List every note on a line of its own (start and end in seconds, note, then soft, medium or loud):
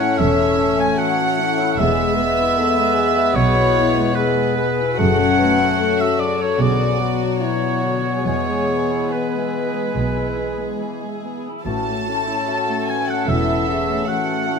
0.00 1.83 A2 medium
0.00 0.19 A3 soft
0.00 0.44 A3 soft
0.00 1.80 A3 medium
0.00 1.76 C#4 medium
0.00 0.19 E4 soft
0.00 2.03 E4 soft
0.00 1.25 A4 soft
0.00 0.72 C#5 soft
0.00 1.75 C#5 soft
0.00 0.99 E5 soft
0.00 0.18 F#5 medium
0.00 0.19 F#5 medium
0.00 0.20 F#5 medium
0.18 0.84 E1 medium
0.18 0.84 E2 medium
0.18 1.83 E3 soft
0.18 0.38 C#4 soft
0.18 1.00 A4 medium
0.18 0.79 E5 medium
0.18 0.82 E5 medium
0.38 0.59 E4 soft
0.46 1.83 A3 soft
0.58 0.79 C#4 medium
0.73 1.52 C#5 soft
0.78 0.99 A3 soft
0.78 0.99 G#5 medium
0.78 1.00 G#5 medium
0.78 1.02 G#5 medium
0.97 1.19 E3 soft
0.97 1.39 F#4 medium
0.97 2.58 E5 soft
0.97 1.79 F#5 medium
0.97 1.80 F#5 medium
1.19 1.39 A3 medium
1.26 1.83 A4 soft
1.38 1.59 C#4 medium
1.38 1.79 E4 medium
1.54 1.83 C#5 soft
1.59 1.79 E4 medium
1.78 2.43 E1 medium
1.78 2.43 E2 medium
1.78 5.02 E2 medium
1.78 1.97 E3 medium
1.78 1.98 G#3 medium
1.78 4.80 G#3 medium
1.78 4.83 B3 medium
1.78 2.18 G#4 medium
1.78 4.98 B4 medium
1.78 3.37 E5 loud
1.78 3.33 E5 medium
1.78 3.37 E5 medium
1.99 2.19 G#3 medium
2.07 3.61 G#3 soft
2.16 2.39 B3 medium
2.16 2.57 B4 medium
2.34 3.09 B4 medium
2.39 2.58 E4 medium
2.57 2.77 B3 medium
2.57 2.96 A4 medium
2.57 4.15 E5 medium
2.77 2.97 G#3 medium
2.84 4.42 G#4 soft
2.95 3.17 E3 medium
2.95 3.35 G#4 medium
3.11 3.88 B4 soft
3.16 3.36 G#3 medium
3.34 4.00 B1 medium
3.34 3.99 B2 medium
3.34 5.03 B2 medium
3.34 3.54 B3 medium
3.34 3.74 F#4 medium
3.34 4.16 C#5 loud
3.34 4.16 C#5 medium
3.57 3.76 E4 medium
3.63 5.03 G#3 soft
3.76 3.96 B3 medium
3.76 4.16 E4 medium
3.89 4.70 B4 medium
3.97 4.16 G#3 medium
4.14 4.36 E3 medium
4.14 4.56 G#4 medium
4.14 4.99 B4 medium
4.14 5.00 B4 medium
4.14 4.98 B4 medium
4.14 5.03 E5 medium
4.36 4.57 G#3 medium
4.44 5.03 G#4 medium
4.57 4.79 B3 medium
4.57 4.98 G#4 medium
4.71 5.02 B4 soft
4.80 5.00 E4 medium
4.97 5.64 F#1 medium
4.97 5.64 F#2 medium
4.97 6.62 F#2 medium
4.97 5.19 C#3 medium
4.97 6.28 A3 medium
4.97 5.39 A3 medium
4.97 6.29 C#4 medium
4.97 8.21 F#4 medium
4.97 5.39 A4 medium
4.97 5.73 F#5 medium
4.97 5.97 F#5 medium
4.97 6.02 F#5 medium
5.21 5.40 F#3 medium
5.26 6.85 F#3 soft
5.38 5.60 A3 soft
5.38 5.66 B4 medium
5.54 6.32 A4 soft
5.61 5.80 C#4 soft
5.78 6.00 A3 medium
5.78 6.57 A4 medium
5.78 6.62 C#5 soft
5.98 6.20 F#3 soft
5.98 6.19 E5 medium
5.98 6.21 E5 medium
5.98 6.22 E5 medium
6.07 7.67 F#4 soft
6.19 6.40 C#3 soft
6.19 6.39 D5 medium
6.19 6.43 D5 medium
6.33 6.62 A4 soft
6.38 6.59 F#3 soft
6.38 6.58 C#5 medium
6.38 6.61 C#5 medium
6.38 6.62 C#5 medium
6.58 7.24 B1 medium
6.58 7.24 B2 medium
6.58 8.29 B2 medium
6.58 6.77 D3 soft
6.58 8.20 F#3 medium
6.58 11.28 B3 medium
6.58 6.98 B3 soft
6.58 6.99 G#4 medium
6.58 7.38 D5 medium
6.58 7.12 D5 medium
6.58 7.13 D5 medium
6.80 7.00 F#3 soft
6.86 8.28 F#3 soft
6.99 7.20 B3 soft
6.99 7.40 F#4 medium
7.13 7.95 B4 soft
7.20 7.40 D4 soft
7.39 7.62 B3 soft
7.39 7.83 E4 soft
7.39 8.22 C#5 medium
7.39 8.20 C#5 medium
7.39 8.22 C#5 medium
7.39 8.28 D5 soft
7.62 7.83 F#3 soft
7.68 8.28 F#4 soft
7.83 8.04 D3 soft
7.83 8.26 F#4 soft
7.96 11.69 B4 soft
8.04 8.25 F#3 soft
8.23 8.94 E1 medium
8.23 8.94 E2 medium
8.23 8.45 E3 soft
8.23 11.69 E3 soft
8.23 11.29 G#3 soft
8.23 11.41 G#4 soft
8.23 11.24 G#4 soft
8.23 9.08 C#5 medium
8.23 9.13 C#5 medium
8.23 9.14 C#5 medium
8.47 8.68 G#3 soft
8.53 10.22 E4 soft
8.68 8.89 B3 soft
8.82 9.65 G#4 soft
8.90 9.11 E4 soft
9.09 9.32 B3 soft
9.09 10.79 B4 soft
9.09 10.81 B4 soft
9.09 10.81 B4 medium
9.09 10.79 B5 soft
9.33 9.53 G#3 soft
9.39 11.07 E5 soft
9.53 9.74 E3 soft
9.66 10.51 G#4 soft
9.74 9.95 G#3 soft
9.95 10.64 B1 soft
9.95 10.63 B2 medium
9.95 11.69 G#3 soft
9.95 10.15 B3 soft
10.17 10.38 E4 soft
10.23 14.13 E4 soft
10.37 10.59 B3 soft
10.52 11.36 G#4 soft
10.58 10.79 G#3 soft
10.79 11.01 E3 soft
10.79 11.69 B5 soft
11.01 11.23 G#3 soft
11.09 12.47 E5 soft
11.23 11.44 B3 soft
11.38 11.69 G#4 soft
11.46 11.66 E4 soft
11.64 12.31 A1 medium
11.64 12.31 A2 medium
11.64 14.59 A2 soft
11.64 11.85 E3 soft
11.64 13.28 A3 soft
11.64 12.06 C#4 soft
11.64 14.03 C#4 medium
11.64 12.04 F#4 soft
11.64 14.59 A4 soft
11.64 12.83 A5 medium
11.64 12.89 A5 medium
11.64 12.91 A5 medium
11.88 12.08 A3 soft
11.93 13.53 A3 soft
12.07 12.28 C#4 soft
12.07 12.48 E4 soft
12.21 13.01 C#5 soft
12.28 12.48 E4 soft
12.47 12.68 C#4 soft
12.47 13.26 F#4 medium
12.47 14.05 E5 soft
12.68 12.88 A3 soft
12.75 14.32 A4 soft
12.87 13.08 E3 soft
12.87 13.07 G#5 medium
12.87 13.10 G#5 medium
12.87 13.12 G#5 medium
13.02 13.79 C#5 soft
13.07 13.28 A3 soft
13.07 13.27 F#5 medium
13.07 13.29 F#5 medium
13.07 13.30 F#5 medium
13.27 13.91 E1 medium
13.27 13.91 E2 medium
13.27 14.59 E3 soft
13.27 14.08 B3 soft
13.27 13.46 C#4 soft
13.27 13.68 E4 soft
13.27 14.05 E5 medium
13.27 14.06 E5 medium
13.27 14.10 E5 medium
13.48 13.68 E4 soft
13.54 14.59 A3 soft
13.69 13.88 C#4 soft
13.69 14.08 G#4 medium
13.80 14.57 C#5 soft
13.90 14.08 A3 soft
14.06 14.28 E3 soft
14.06 14.46 A3 soft
14.06 14.59 C#4 soft
14.06 14.47 F#4 soft
14.06 14.59 E5 soft
14.06 14.59 F#5 medium
14.29 14.48 A3 soft
14.29 14.59 A4 soft
14.46 14.59 A3 soft
14.46 14.59 C#4 soft
14.46 14.59 E4 soft